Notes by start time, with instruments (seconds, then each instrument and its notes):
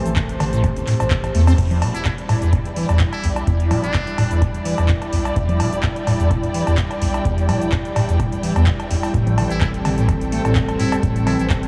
Already playing: acid bass E3, analog synth pad A3 G4 C5, string section G4 C5 A5
0.06 analog synth bass A1, closed hi-hat, shaker
0.16 acid bass A2, kick, clap, closed hi-hat, cowbell, shaker
0.29 closed hi-hat, shaker
0.40 analog synth bass A1, acid bass D3, open hi-hat, cowbell
0.53 acid bass A2, closed hi-hat, shaker
0.64 acid bass E3, kick, closed hi-hat, cowbell, shaker
0.76 analog synth bass G1, acid bass A1, closed hi-hat, shaker
0.87 acid bass A2, clap, open hi-hat
1.00 analog synth bass A1, acid bass A2, closed hi-hat, cowbell, shaker
1.11 kick, clap, closed hi-hat, shaker
1.24 acid bass A1, closed hi-hat, cowbell, shaker
1.35 analog synth bass E2, acid bass A3, open hi-hat
1.47 acid bass C4, open hi-hat, cowbell, shaker
1.58 analog synth bass E1, acid bass E2, analog synth pad G3 E4 D5, string section E4, kick, closed hi-hat, crash, shaker
1.67 string section D5, closed hi-hat, low conga
1.72 shaker
1.82 acid bass B2, open hi-hat, cowbell
1.95 analog synth bass E1, muted trumpet E4, closed hi-hat, shaker
2.05 acid bass E2, muted trumpet E4, kick, clap, closed hi-hat, cowbell, shaker
2.18 closed hi-hat, shaker
2.29 analog synth bass E1, acid bass A2, open hi-hat, cowbell
2.42 acid bass E2, closed hi-hat, shaker
2.46 string section G5
2.53 acid bass B2, kick, closed hi-hat, cowbell, shaker
2.65 analog synth bass E1, acid bass E1, closed hi-hat, shaker
2.76 acid bass E3, open hi-hat
2.89 analog synth bass E1, acid bass E2, closed hi-hat, cowbell, shaker
2.99 acid bass E2, kick, clap, closed hi-hat, shaker
3.13 muted trumpet E4, closed hi-hat, cowbell, shaker
3.24 analog synth bass B1, acid bass E2, open hi-hat
3.36 closed hi-hat, cowbell, shaker
3.47 analog synth bass E1, acid bass E2, kick, closed hi-hat, shaker
3.60 closed hi-hat, shaker
3.71 acid bass B2, open hi-hat, cowbell, low conga
3.83 analog synth bass E1, muted trumpet D4, closed hi-hat, shaker
3.94 acid bass E2, kick, clap, closed hi-hat, cowbell, shaker
4.07 closed hi-hat, shaker
4.18 analog synth bass E1, acid bass A2, open hi-hat, cowbell
4.31 acid bass E2, closed hi-hat, shaker
4.42 acid bass B2, kick, closed hi-hat, cowbell, shaker
4.54 acid bass E1, analog synth bass E1, closed hi-hat, shaker
4.65 acid bass E3, open hi-hat
4.78 analog synth bass E1, acid bass E2, closed hi-hat, cowbell, shaker
4.89 kick, clap, closed hi-hat, shaker
5.02 closed hi-hat, cowbell, shaker
5.13 analog synth bass B1, acid bass E2, open hi-hat
5.25 closed hi-hat, cowbell, shaker
5.36 analog synth bass E1, acid bass E2, kick, closed hi-hat, shaker
5.49 closed hi-hat, low conga, shaker
5.60 acid bass B2, open hi-hat, cowbell
5.73 analog synth bass E1, closed hi-hat, shaker
5.83 acid bass E2, kick, clap, closed hi-hat, cowbell, shaker
5.96 closed hi-hat, shaker
6.07 analog synth bass E1, acid bass A2, open hi-hat, cowbell
6.20 acid bass E2, closed hi-hat, shaker
6.31 acid bass B2, kick, closed hi-hat, cowbell, shaker
6.43 acid bass E1, analog synth bass E1, closed hi-hat, shaker
6.54 acid bass E3, open hi-hat
6.67 analog synth bass E1, acid bass E2, closed hi-hat, cowbell, shaker
6.77 acid bass E2, kick, clap, closed hi-hat, shaker
6.91 closed hi-hat, cowbell, shaker
7.02 analog synth bass B1, acid bass E2, open hi-hat
7.14 closed hi-hat, cowbell, shaker
7.25 analog synth bass E1, acid bass E2, kick, closed hi-hat, shaker
7.38 closed hi-hat, shaker
7.49 acid bass B2, open hi-hat, cowbell, low conga
7.62 analog synth bass E1, closed hi-hat, shaker
7.72 acid bass E2, kick, clap, closed hi-hat, cowbell, shaker
7.85 closed hi-hat, shaker
7.96 analog synth bass E1, acid bass A2, open hi-hat, cowbell
8.09 acid bass E2, closed hi-hat, shaker
8.20 acid bass B2, kick, closed hi-hat, cowbell, shaker
8.32 analog synth bass D1, acid bass E1, closed hi-hat, shaker
8.43 acid bass E3, open hi-hat
8.56 acid bass E2, analog synth bass E2, closed hi-hat, cowbell, shaker
8.66 acid bass E2, kick, clap, closed hi-hat, shaker
8.80 closed hi-hat, cowbell, shaker
8.91 analog synth bass E1, acid bass E2, open hi-hat
9.03 open hi-hat, cowbell, shaker
9.14 analog synth bass A1, acid bass A2, analog synth pad C4 A4, string section C4, kick, closed hi-hat, shaker
9.24 string section A4, closed hi-hat, low conga, shaker
9.38 acid bass E3, open hi-hat, cowbell
9.50 analog synth bass A1, muted trumpet E4, closed hi-hat, shaker
9.61 acid bass A2, muted trumpet E4, kick, clap, closed hi-hat, cowbell, shaker
9.74 closed hi-hat, shaker
9.85 analog synth bass A1, acid bass D3, open hi-hat, cowbell
9.98 acid bass A2, closed hi-hat, shaker
10.09 acid bass E3, kick, closed hi-hat, cowbell, shaker
10.21 analog synth bass A1, acid bass A1, closed hi-hat, shaker
10.32 acid bass A3, open hi-hat
10.45 analog synth bass A1, acid bass A2, closed hi-hat, cowbell, shaker
10.55 acid bass A2, kick, clap, closed hi-hat, shaker
10.69 closed hi-hat, cowbell, shaker
10.80 analog synth bass E1, acid bass A2, muted trumpet E4, open hi-hat
10.92 closed hi-hat, cowbell, shaker
11.03 analog synth bass A1, acid bass A2, kick, closed hi-hat, shaker
11.16 closed hi-hat, shaker
11.27 acid bass E3, muted trumpet E4, open hi-hat, cowbell, low conga
11.39 analog synth bass A1, muted trumpet E4, closed hi-hat, shaker
11.50 acid bass A2, kick, clap, closed hi-hat, cowbell, shaker
11.63 closed hi-hat, shaker